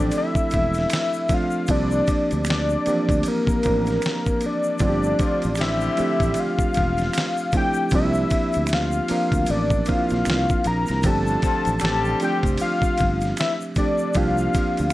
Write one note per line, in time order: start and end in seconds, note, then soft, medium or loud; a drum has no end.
0.00 0.47 D3 medium
0.00 1.30 F3 medium
0.00 0.47 G3 medium
0.00 1.31 A3 medium
0.00 0.47 C4 loud
0.00 1.31 C4 medium
0.00 1.31 D4 medium
0.00 0.47 G4 loud
0.00 1.70 G4 medium
0.00 1.22 A4 medium
0.00 0.15 D5 loud
0.11 ride medium
0.11 shaker medium
0.18 1.35 E5 loud
0.35 muted fretless electric bass stroke medium
0.35 kick loud
0.35 shaker medium
0.51 0.85 E1 medium
0.51 kick medium
0.51 ride medium
0.51 shaker soft
0.74 ride soft
0.74 shaker soft
0.78 snare soft
0.90 finger snap medium
0.90 snare loud
0.90 ride medium
0.90 shaker medium
1.13 shaker soft
1.29 1.67 F3 medium
1.29 1.67 A3 medium
1.29 1.67 C4 medium
1.29 1.67 D4 medium
1.29 1.68 F4 medium
1.29 kick loud
1.29 ride medium
1.29 shaker soft
1.34 1.70 F5 medium
1.51 shaker soft
1.67 2.00 C2 loud
1.67 2.79 F3 medium
1.67 2.79 A#3 medium
1.67 2.80 C4 medium
1.67 2.80 D4 medium
1.67 kick loud
1.67 ride medium
1.67 shaker medium
1.71 2.80 G4 loud
1.71 2.44 D5 loud
1.91 shaker medium
2.07 kick loud
2.07 ride medium
2.07 shaker medium
2.31 2.76 D2 medium
2.31 ride soft
2.31 shaker medium
2.45 finger snap medium
2.45 ride medium
2.45 shaker medium
2.50 3.29 D5 loud
2.50 snare loud
2.69 shaker soft
2.86 2.94 E3 medium
2.86 3.60 A#3 medium
2.86 3.60 C4 medium
2.86 3.60 D4 medium
2.86 3.60 G4 medium
2.86 muted fretless electric bass stroke soft
2.86 ride medium
2.86 shaker soft
2.93 3.63 F3 medium
3.09 3.22 D2 medium
3.09 kick loud
3.09 ride soft
3.09 shaker medium
3.23 ride medium
3.23 shaker medium
3.28 4.47 A#4 loud
3.47 muted fretless electric bass stroke medium
3.47 kick loud
3.47 shaker soft
3.63 3.97 A1 loud
3.63 4.74 F3 medium
3.63 4.75 A#3 medium
3.63 4.75 C4 medium
3.63 4.75 D4 medium
3.63 4.75 A#4 medium
3.63 kick medium
3.63 ride medium
3.63 shaker soft
3.86 ride soft
3.86 shaker soft
3.90 snare soft
4.02 finger snap medium
4.02 snare loud
4.02 ride medium
4.02 shaker medium
4.26 kick loud
4.26 shaker soft
4.41 ride medium
4.41 shaker soft
4.46 5.60 D5 loud
4.63 shaker soft
4.79 5.12 G1 loud
4.79 5.91 F3 medium
4.79 5.91 A3 medium
4.79 5.91 C4 medium
4.79 5.91 D4 medium
4.79 4.89 F4 medium
4.79 kick loud
4.79 ride medium
4.79 shaker medium
4.89 5.95 G4 loud
5.03 5.17 A2 medium
5.03 5.17 D3 medium
5.03 5.17 F3 medium
5.03 5.17 D4 medium
5.03 shaker medium
5.19 5.51 D3 medium
5.19 5.51 F3 medium
5.19 5.51 C4 medium
5.19 5.51 F4 medium
5.19 kick loud
5.19 ride medium
5.19 shaker medium
5.42 5.88 A1 medium
5.42 ride soft
5.42 shaker soft
5.55 6.71 D3 loud
5.55 6.71 G3 loud
5.55 6.71 C4 loud
5.55 6.71 G4 loud
5.55 finger snap medium
5.55 ride medium
5.55 shaker medium
5.61 6.41 E5 loud
5.61 snare loud
5.81 shaker soft
5.97 7.45 F3 medium
5.97 7.45 A3 medium
5.97 7.45 C4 medium
5.97 7.45 D4 medium
5.97 7.45 G4 medium
5.97 muted fretless electric bass stroke soft
5.97 ride medium
5.97 shaker soft
6.20 6.33 A1 medium
6.20 kick medium
6.20 ride soft
6.20 shaker medium
6.34 ride medium
6.34 shaker medium
6.40 7.55 F5 loud
6.59 muted fretless electric bass stroke medium
6.59 kick loud
6.59 shaker soft
6.74 kick medium
6.74 ride medium
6.74 shaker soft
6.78 7.08 E1 medium
6.98 ride soft
6.98 shaker soft
7.02 snare soft
7.13 finger snap medium
7.13 ride medium
7.13 shaker medium
7.18 snare loud
7.37 shaker soft
7.52 7.90 F3 medium
7.52 7.90 A3 medium
7.52 7.91 C4 medium
7.52 7.91 D4 medium
7.52 7.91 E4 medium
7.52 kick loud
7.52 ride medium
7.52 shaker soft
7.57 7.91 G5 loud
7.74 shaker soft
7.90 8.24 C2 loud
7.90 9.03 F3 medium
7.90 9.03 A#3 medium
7.90 9.03 C4 medium
7.90 kick loud
7.90 ride medium
7.90 shaker medium
7.94 9.03 D4 medium
7.94 9.04 G4 loud
7.94 8.76 E5 loud
8.14 shaker medium
8.30 kick loud
8.30 ride medium
8.30 shaker medium
8.53 8.99 D2 medium
8.53 ride soft
8.53 shaker soft
8.67 finger snap medium
8.67 ride medium
8.67 shaker medium
8.73 9.52 F5 loud
8.73 snare loud
8.92 shaker soft
9.08 9.83 F3 medium
9.08 9.83 A#3 medium
9.08 9.83 C4 medium
9.08 9.83 D4 medium
9.08 9.83 A#4 medium
9.08 muted fretless electric bass stroke soft
9.08 open hi-hat medium
9.08 ride medium
9.08 shaker soft
9.32 9.45 D2 medium
9.32 kick loud
9.32 ride soft
9.32 shaker medium
9.46 9.80 A1 loud
9.46 ride medium
9.46 shaker medium
9.51 9.90 D5 loud
9.70 kick loud
9.70 shaker medium
9.85 10.97 F3 medium
9.85 10.98 A#3 medium
9.85 10.98 C4 medium
9.85 10.98 D4 medium
9.85 9.96 E4 medium
9.85 10.69 F5 loud
9.85 kick medium
9.85 ride medium
9.85 shaker medium
9.90 muted fretless electric bass stroke soft
9.96 11.02 F4 medium
10.09 10.24 A#1 medium
10.09 ride soft
10.09 shaker soft
10.14 snare soft
10.25 10.45 C2 loud
10.25 finger snap medium
10.25 ride medium
10.25 shaker medium
10.30 snare loud
10.49 kick loud
10.49 shaker soft
10.64 10.84 A#1 medium
10.64 11.08 A#5 loud
10.64 ride medium
10.64 shaker soft
10.86 11.02 C2 loud
10.86 ride soft
10.86 shaker soft
10.91 snare soft
11.03 11.35 G1 loud
11.03 12.15 F3 loud
11.03 12.15 A3 medium
11.03 12.15 C4 medium
11.03 12.15 D4 medium
11.03 12.15 G4 loud
11.03 11.83 A5 loud
11.03 kick loud
11.03 ride medium
11.03 shaker medium
11.27 11.40 A2 medium
11.27 11.40 D3 medium
11.27 11.40 F3 medium
11.27 11.40 D4 medium
11.27 shaker soft
11.42 11.74 D3 medium
11.42 11.74 F3 medium
11.42 11.74 C4 medium
11.42 11.74 F4 medium
11.42 kick medium
11.42 ride medium
11.42 shaker medium
11.65 11.79 A1 medium
11.65 ride soft
11.65 shaker medium
11.80 12.13 A1 loud
11.80 12.95 D3 medium
11.80 12.95 G3 loud
11.80 12.95 C4 loud
11.80 12.95 G4 loud
11.80 12.19 A5 loud
11.80 finger snap medium
11.80 ride medium
11.80 shaker medium
11.85 snare loud
12.04 shaker soft
12.20 13.68 F3 medium
12.20 13.68 A3 medium
12.20 13.68 C4 medium
12.20 13.69 D4 medium
12.20 13.69 G4 medium
12.20 ride medium
12.20 shaker soft
12.24 12.38 G5 loud
12.43 12.57 F1 medium
12.43 kick loud
12.43 ride soft
12.43 shaker medium
12.58 13.34 F5 loud
12.58 ride medium
12.58 shaker medium
12.82 muted fretless electric bass stroke medium
12.82 kick loud
12.82 shaker soft
12.98 13.31 G1 loud
12.98 kick loud
12.98 ride medium
12.98 shaker soft
13.21 ride soft
13.21 shaker soft
13.25 snare soft
13.37 13.54 E5 loud
13.37 finger snap medium
13.37 snare loud
13.37 ride medium
13.37 shaker medium
13.61 shaker medium
13.75 14.13 F3 medium
13.75 14.13 A3 medium
13.75 14.14 C4 medium
13.75 14.14 D4 medium
13.75 14.14 G4 medium
13.75 14.18 D5 medium
13.75 kick medium
13.75 ride medium
13.75 shaker soft
13.98 shaker soft
14.13 14.47 C2 loud
14.13 14.93 F3 medium
14.13 14.93 A#3 medium
14.13 14.93 C4 medium
14.13 14.93 D4 medium
14.13 14.93 F5 loud
14.13 kick loud
14.13 ride medium
14.13 shaker medium
14.18 14.93 G4 loud
14.38 shaker medium
14.54 kick loud
14.54 ride medium
14.54 shaker medium
14.77 14.93 D2 medium
14.77 ride soft
14.77 shaker soft